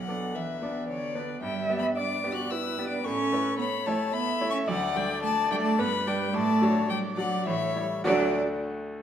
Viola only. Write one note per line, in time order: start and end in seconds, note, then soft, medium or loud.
0.08 0.36 A4 medium
0.35 0.88 B4 medium
0.89 1.17 C#5 medium
1.15 1.42 B4 medium
1.43 1.98 E5 medium
1.97 2.52 D5 medium
2.51 3.07 B4 medium
3.05 3.34 A4 medium
3.32 3.59 B4 medium
3.60 4.13 C#5 medium
4.14 4.70 E5 loud
4.68 5.23 D5 loud
5.23 5.80 D5 loud
5.79 6.33 B4 medium
6.34 6.64 D5 loud
6.63 6.91 C#5 medium
6.90 7.48 D5 medium
7.46 7.76 C#5 medium
8.06 8.37 F#3 medium